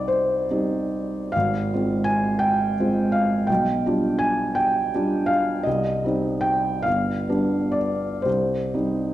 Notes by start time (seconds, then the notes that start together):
Already playing: C2 G3 C4 D#4 D5 D#5
0.08 C5
0.50 G3 C4 D#4
1.32 G#1 F5
1.73 G#3 C4 F4
2.04 G#5
2.39 G5
2.80 G#3 C4 F4
3.12 F5
3.47 B1 G5
3.86 G3 D4 F4
4.19 G#5
4.55 G5
4.94 G3 D4 F4
5.26 F5
5.63 C2 D#5
6.04 G3 C4 D#4
6.41 G5
6.83 G1 F5
7.29 G3 B3 D4
7.72 D5
8.22 C2 C5
8.74 G3 C4 D#4